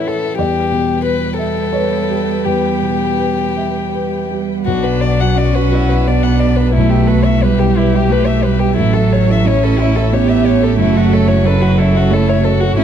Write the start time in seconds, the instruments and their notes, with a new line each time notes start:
Already playing: grand piano A2 E3 E4 A4 B4 C#5 E5 F#5, cello E3, string section C#4 A4 E5
0.06 grand piano E4, violin A4
0.37 grand piano E2 D5, cello G3, string section B3 B4 G5, violin G4
0.71 grand piano B2
1.04 grand piano B4, violin B4
1.39 violin A4, grand piano E5
1.73 grand piano B4 C#5
2.10 grand piano G4
2.45 grand piano E2 B4, violin G4
2.82 grand piano B2
3.19 grand piano B4
3.57 grand piano E5
3.95 grand piano B4
4.28 cello G3, grand piano G4
4.65 double bass B1, grand piano B1, cello F#3, string section B3 B4 F#5, viola D4, violin F#4
4.84 violin B4, grand piano F#5
5.01 violin D5, grand piano D5
5.21 grand piano F#4, violin F#5
5.36 cello C#4, viola F#4, violin D5
5.40 grand piano D5
5.55 grand piano F#4, violin B4
5.72 viola E4, violin F#4, grand piano D5
5.89 violin B4, grand piano F#5
6.07 cello B3, viola D4, violin D5, grand piano D5
6.23 violin F#5, grand piano F#5
6.40 violin D5, grand piano D5
6.56 violin B4
6.61 grand piano B4
6.74 grand piano B1, cello A3, violin E4, viola E4, string section E5
6.90 violin G4
6.94 grand piano E5
7.07 viola F#4, violin B4, grand piano B4
7.25 violin E5
7.29 grand piano E4
7.42 cello G3, viola G4, violin B4, grand piano B4
7.59 grand piano E4, violin G4
7.77 violin E4, grand piano B4
7.94 violin G4, grand piano E5
8.08 cello A3, grand piano B4
8.12 violin B4
8.26 violin E5, grand piano E5
8.42 cello G3, grand piano B4, violin B4
8.59 violin G4, grand piano G4
8.76 double bass A1, grand piano A1, cello F#3, violin E4, viola A4
8.80 string section C#4 A4
8.94 violin A4, grand piano E5
9.13 violin C#5, grand piano C#5
9.30 grand piano E4, violin E5
9.45 cello C#4, viola E4, grand piano C#5, violin C#5
9.64 grand piano E4, violin A4
9.80 violin E4, grand piano C#5
9.96 violin A4, grand piano E5
10.12 cello B3, viola G4, grand piano C#5, violin C#5
10.29 grand piano E5, violin E5
10.43 grand piano C#5, violin C#5
10.62 grand piano A4, violin A4
10.77 double bass F#1, grand piano F#2, cello A3, violin E4, viola F#4
10.96 violin F#4, grand piano E5
11.12 violin A4, grand piano C#5
11.28 grand piano E4, violin C#5
11.43 cello F#3, violin A4, viola B4, grand piano C#5
11.61 grand piano E4, violin F#4
11.78 violin E4, viola A4, grand piano C#5
11.95 violin F#4, grand piano E5
12.10 cello A3, viola E4, violin A4, grand piano C#5
12.29 violin C#5, grand piano E5
12.43 viola F#4, violin A4, grand piano C#5
12.61 violin F#4, grand piano A4
12.76 double bass A1, grand piano A2, cello C#4, violin E4, string section A4 C#5 E5